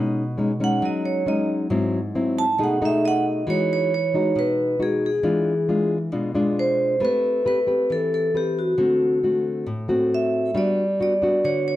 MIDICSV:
0, 0, Header, 1, 3, 480
1, 0, Start_track
1, 0, Tempo, 441826
1, 1854, Time_signature, 4, 2, 24, 8
1, 12778, End_track
2, 0, Start_track
2, 0, Title_t, "Vibraphone"
2, 0, Program_c, 0, 11
2, 694, Note_on_c, 0, 78, 96
2, 908, Note_off_c, 0, 78, 0
2, 928, Note_on_c, 0, 75, 73
2, 1145, Note_off_c, 0, 75, 0
2, 1146, Note_on_c, 0, 73, 80
2, 1373, Note_off_c, 0, 73, 0
2, 1394, Note_on_c, 0, 75, 86
2, 1617, Note_off_c, 0, 75, 0
2, 2591, Note_on_c, 0, 81, 110
2, 2816, Note_off_c, 0, 81, 0
2, 2864, Note_on_c, 0, 78, 76
2, 3073, Note_off_c, 0, 78, 0
2, 3100, Note_on_c, 0, 76, 78
2, 3311, Note_off_c, 0, 76, 0
2, 3319, Note_on_c, 0, 75, 104
2, 3342, Note_on_c, 0, 78, 100
2, 3472, Note_off_c, 0, 78, 0
2, 3801, Note_off_c, 0, 75, 0
2, 3804, Note_on_c, 0, 73, 92
2, 4036, Note_off_c, 0, 73, 0
2, 4052, Note_on_c, 0, 73, 93
2, 4258, Note_off_c, 0, 73, 0
2, 4285, Note_on_c, 0, 73, 89
2, 4764, Note_off_c, 0, 73, 0
2, 4766, Note_on_c, 0, 71, 84
2, 5199, Note_off_c, 0, 71, 0
2, 5243, Note_on_c, 0, 68, 73
2, 5454, Note_off_c, 0, 68, 0
2, 5499, Note_on_c, 0, 68, 65
2, 6395, Note_off_c, 0, 68, 0
2, 7163, Note_on_c, 0, 72, 98
2, 7645, Note_off_c, 0, 72, 0
2, 7656, Note_on_c, 0, 71, 95
2, 8109, Note_off_c, 0, 71, 0
2, 8122, Note_on_c, 0, 71, 88
2, 8604, Note_off_c, 0, 71, 0
2, 8607, Note_on_c, 0, 69, 82
2, 8831, Note_off_c, 0, 69, 0
2, 8844, Note_on_c, 0, 69, 75
2, 9078, Note_off_c, 0, 69, 0
2, 9092, Note_on_c, 0, 67, 81
2, 9300, Note_off_c, 0, 67, 0
2, 9328, Note_on_c, 0, 66, 68
2, 10230, Note_off_c, 0, 66, 0
2, 11021, Note_on_c, 0, 76, 82
2, 11489, Note_on_c, 0, 74, 86
2, 11494, Note_off_c, 0, 76, 0
2, 11965, Note_off_c, 0, 74, 0
2, 11978, Note_on_c, 0, 74, 87
2, 12440, Note_on_c, 0, 73, 81
2, 12453, Note_off_c, 0, 74, 0
2, 12674, Note_off_c, 0, 73, 0
2, 12687, Note_on_c, 0, 73, 82
2, 12778, Note_off_c, 0, 73, 0
2, 12778, End_track
3, 0, Start_track
3, 0, Title_t, "Nylon-string guitar"
3, 0, Program_c, 1, 24
3, 0, Note_on_c, 1, 47, 73
3, 0, Note_on_c, 1, 56, 53
3, 0, Note_on_c, 1, 61, 54
3, 0, Note_on_c, 1, 63, 65
3, 250, Note_off_c, 1, 56, 0
3, 251, Note_off_c, 1, 61, 0
3, 254, Note_off_c, 1, 63, 0
3, 407, Note_on_c, 1, 56, 57
3, 415, Note_on_c, 1, 61, 65
3, 419, Note_on_c, 1, 63, 58
3, 552, Note_off_c, 1, 56, 0
3, 556, Note_off_c, 1, 61, 0
3, 558, Note_off_c, 1, 63, 0
3, 651, Note_on_c, 1, 56, 55
3, 656, Note_on_c, 1, 61, 66
3, 664, Note_on_c, 1, 63, 65
3, 875, Note_off_c, 1, 47, 0
3, 892, Note_on_c, 1, 54, 77
3, 1334, Note_off_c, 1, 56, 0
3, 1338, Note_off_c, 1, 61, 0
3, 1340, Note_off_c, 1, 63, 0
3, 1368, Note_on_c, 1, 56, 56
3, 1378, Note_on_c, 1, 61, 54
3, 1383, Note_on_c, 1, 63, 59
3, 1829, Note_off_c, 1, 54, 0
3, 1832, Note_off_c, 1, 56, 0
3, 1837, Note_off_c, 1, 61, 0
3, 1838, Note_off_c, 1, 63, 0
3, 1848, Note_on_c, 1, 44, 71
3, 1851, Note_on_c, 1, 54, 57
3, 1860, Note_on_c, 1, 64, 64
3, 1861, Note_on_c, 1, 60, 64
3, 2163, Note_off_c, 1, 54, 0
3, 2165, Note_off_c, 1, 60, 0
3, 2166, Note_off_c, 1, 64, 0
3, 2337, Note_on_c, 1, 54, 63
3, 2340, Note_on_c, 1, 60, 70
3, 2346, Note_on_c, 1, 64, 67
3, 2659, Note_off_c, 1, 54, 0
3, 2659, Note_off_c, 1, 60, 0
3, 2663, Note_off_c, 1, 64, 0
3, 2787, Note_off_c, 1, 44, 0
3, 2807, Note_on_c, 1, 47, 77
3, 2814, Note_on_c, 1, 57, 57
3, 2815, Note_on_c, 1, 63, 65
3, 2823, Note_on_c, 1, 68, 64
3, 3014, Note_off_c, 1, 57, 0
3, 3016, Note_off_c, 1, 63, 0
3, 3020, Note_off_c, 1, 68, 0
3, 3059, Note_on_c, 1, 57, 76
3, 3062, Note_on_c, 1, 63, 79
3, 3069, Note_on_c, 1, 68, 81
3, 3739, Note_off_c, 1, 57, 0
3, 3742, Note_off_c, 1, 63, 0
3, 3742, Note_off_c, 1, 68, 0
3, 3748, Note_off_c, 1, 47, 0
3, 3768, Note_on_c, 1, 52, 62
3, 3774, Note_on_c, 1, 56, 54
3, 3781, Note_on_c, 1, 66, 52
3, 3782, Note_on_c, 1, 63, 58
3, 4250, Note_off_c, 1, 56, 0
3, 4252, Note_off_c, 1, 63, 0
3, 4255, Note_off_c, 1, 66, 0
3, 4497, Note_on_c, 1, 56, 51
3, 4504, Note_on_c, 1, 63, 64
3, 4511, Note_on_c, 1, 66, 61
3, 4709, Note_off_c, 1, 52, 0
3, 4730, Note_on_c, 1, 47, 58
3, 5178, Note_off_c, 1, 56, 0
3, 5182, Note_off_c, 1, 63, 0
3, 5185, Note_off_c, 1, 66, 0
3, 5208, Note_on_c, 1, 56, 54
3, 5209, Note_on_c, 1, 63, 54
3, 5213, Note_on_c, 1, 66, 59
3, 5534, Note_off_c, 1, 63, 0
3, 5535, Note_off_c, 1, 56, 0
3, 5537, Note_off_c, 1, 66, 0
3, 5669, Note_off_c, 1, 47, 0
3, 5684, Note_on_c, 1, 56, 51
3, 5685, Note_on_c, 1, 52, 66
3, 5689, Note_on_c, 1, 62, 56
3, 5698, Note_on_c, 1, 65, 61
3, 5999, Note_off_c, 1, 56, 0
3, 6003, Note_off_c, 1, 62, 0
3, 6005, Note_off_c, 1, 65, 0
3, 6178, Note_on_c, 1, 56, 60
3, 6181, Note_on_c, 1, 62, 56
3, 6185, Note_on_c, 1, 65, 64
3, 6487, Note_off_c, 1, 56, 0
3, 6487, Note_off_c, 1, 62, 0
3, 6490, Note_off_c, 1, 65, 0
3, 6627, Note_off_c, 1, 52, 0
3, 6648, Note_on_c, 1, 47, 65
3, 6653, Note_on_c, 1, 56, 46
3, 6655, Note_on_c, 1, 62, 48
3, 6663, Note_on_c, 1, 65, 54
3, 6856, Note_off_c, 1, 56, 0
3, 6858, Note_off_c, 1, 62, 0
3, 6862, Note_off_c, 1, 65, 0
3, 6893, Note_on_c, 1, 56, 63
3, 6901, Note_on_c, 1, 62, 76
3, 6905, Note_on_c, 1, 65, 68
3, 7578, Note_off_c, 1, 56, 0
3, 7579, Note_off_c, 1, 62, 0
3, 7583, Note_off_c, 1, 65, 0
3, 7589, Note_off_c, 1, 47, 0
3, 7608, Note_on_c, 1, 57, 72
3, 7612, Note_on_c, 1, 60, 54
3, 7615, Note_on_c, 1, 67, 56
3, 7619, Note_on_c, 1, 71, 69
3, 8055, Note_off_c, 1, 60, 0
3, 8059, Note_off_c, 1, 67, 0
3, 8059, Note_off_c, 1, 71, 0
3, 8094, Note_on_c, 1, 60, 56
3, 8098, Note_on_c, 1, 67, 56
3, 8106, Note_on_c, 1, 71, 61
3, 8238, Note_off_c, 1, 60, 0
3, 8239, Note_off_c, 1, 67, 0
3, 8243, Note_off_c, 1, 71, 0
3, 8329, Note_on_c, 1, 60, 54
3, 8336, Note_on_c, 1, 67, 56
3, 8341, Note_on_c, 1, 71, 59
3, 8550, Note_off_c, 1, 57, 0
3, 8582, Note_on_c, 1, 52, 66
3, 9015, Note_off_c, 1, 60, 0
3, 9019, Note_off_c, 1, 67, 0
3, 9021, Note_off_c, 1, 71, 0
3, 9059, Note_on_c, 1, 60, 54
3, 9067, Note_on_c, 1, 67, 53
3, 9072, Note_on_c, 1, 71, 52
3, 9502, Note_off_c, 1, 60, 0
3, 9503, Note_off_c, 1, 67, 0
3, 9504, Note_off_c, 1, 71, 0
3, 9516, Note_off_c, 1, 52, 0
3, 9536, Note_on_c, 1, 50, 73
3, 9543, Note_on_c, 1, 57, 47
3, 9543, Note_on_c, 1, 60, 57
3, 9550, Note_on_c, 1, 66, 70
3, 9981, Note_off_c, 1, 57, 0
3, 9983, Note_off_c, 1, 60, 0
3, 9985, Note_off_c, 1, 66, 0
3, 10031, Note_on_c, 1, 57, 53
3, 10035, Note_on_c, 1, 60, 52
3, 10041, Note_on_c, 1, 66, 59
3, 10474, Note_off_c, 1, 50, 0
3, 10500, Note_on_c, 1, 45, 64
3, 10502, Note_off_c, 1, 57, 0
3, 10504, Note_off_c, 1, 60, 0
3, 10507, Note_off_c, 1, 66, 0
3, 10737, Note_on_c, 1, 57, 64
3, 10745, Note_on_c, 1, 60, 70
3, 10745, Note_on_c, 1, 66, 78
3, 11420, Note_off_c, 1, 57, 0
3, 11423, Note_off_c, 1, 66, 0
3, 11424, Note_off_c, 1, 60, 0
3, 11436, Note_off_c, 1, 45, 0
3, 11456, Note_on_c, 1, 55, 71
3, 11458, Note_on_c, 1, 59, 55
3, 11459, Note_on_c, 1, 62, 55
3, 11468, Note_on_c, 1, 66, 60
3, 11766, Note_off_c, 1, 59, 0
3, 11770, Note_off_c, 1, 62, 0
3, 11771, Note_off_c, 1, 66, 0
3, 11948, Note_on_c, 1, 59, 58
3, 11953, Note_on_c, 1, 62, 55
3, 11956, Note_on_c, 1, 66, 62
3, 12085, Note_off_c, 1, 59, 0
3, 12088, Note_off_c, 1, 62, 0
3, 12088, Note_off_c, 1, 66, 0
3, 12187, Note_on_c, 1, 59, 59
3, 12190, Note_on_c, 1, 62, 58
3, 12202, Note_on_c, 1, 66, 75
3, 12395, Note_off_c, 1, 55, 0
3, 12432, Note_on_c, 1, 50, 65
3, 12778, Note_off_c, 1, 50, 0
3, 12778, Note_off_c, 1, 59, 0
3, 12778, Note_off_c, 1, 62, 0
3, 12778, Note_off_c, 1, 66, 0
3, 12778, End_track
0, 0, End_of_file